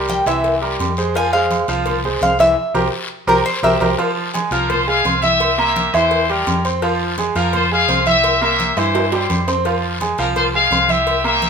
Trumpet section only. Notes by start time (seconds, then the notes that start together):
4.52 C#4 A#4
4.69 F4 C5
4.87 G#4 F5
5.22 G4 E5
5.58 G4 E5
5.93 E4 C5
6.29 C#4 A#4
7.37 C#4 A#4
7.55 F4 C5
7.72 G#4 F5
8.07 G4 E5
8.42 G4 E5
8.77 E4 C5
9.14 E4 C5
10.19 C#4 A#4
10.36 F4 C5
10.56 G#4 F5
10.90 G4 E5
11.26 G4 E5